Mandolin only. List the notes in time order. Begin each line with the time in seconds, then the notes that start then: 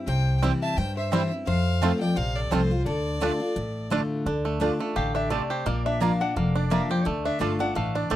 0.42 C4 E4 C5 G5
1.12 C4 E4 C5 G5
1.82 C4 F4 C5 A5
2.51 C4 F4 C5 A5
3.21 A3 F4 D5 A5
3.91 A3 F4 D5 A5
4.61 A3 F4 D5 A5
5.31 A3 F4 D5 A5
6.00 A#3 F4 D5 A#5
6.71 A#3 F4 D5 A#5
7.41 A3 F4 D5 A5
8.10 A3 F4 D5 A5